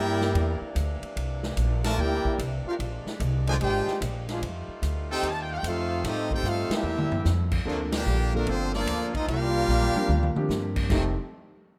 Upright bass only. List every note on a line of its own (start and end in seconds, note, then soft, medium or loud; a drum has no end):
0.00 0.33 G2 loud
0.34 0.60 E2 loud
0.61 muted upright bass stroke soft
0.75 1.00 D2 loud
1.02 muted upright bass stroke soft
1.16 1.56 C2 medium
1.56 1.96 A#1 loud
1.97 2.23 D2 medium
2.25 muted upright bass stroke soft
2.38 2.63 C2 loud
2.64 muted upright bass stroke soft
2.79 3.04 A#1 medium
3.05 muted upright bass stroke soft
3.20 3.59 C2 loud
3.60 3.85 G#1 medium
3.86 muted upright bass stroke soft
4.01 4.40 A#1 loud
4.42 4.67 F2 medium
4.68 muted upright bass stroke soft
4.82 5.21 D2 loud
5.23 5.62 D#2 medium
5.63 6.03 F2 loud
6.04 6.42 A2 medium
6.43 6.69 G2 loud
6.69 muted upright bass stroke soft
6.83 7.09 E2 medium
7.11 muted upright bass stroke soft
7.25 7.65 F2 loud
7.65 8.05 D2 medium
8.06 8.46 A#1 loud
8.46 8.86 G1 medium
8.87 9.27 D2 medium
9.28 9.67 C2 medium
9.68 9.93 A#1 loud
9.95 muted upright bass stroke soft
10.08 10.34 D2 loud
10.49 10.88 G2 loud
10.90 11.15 F1 medium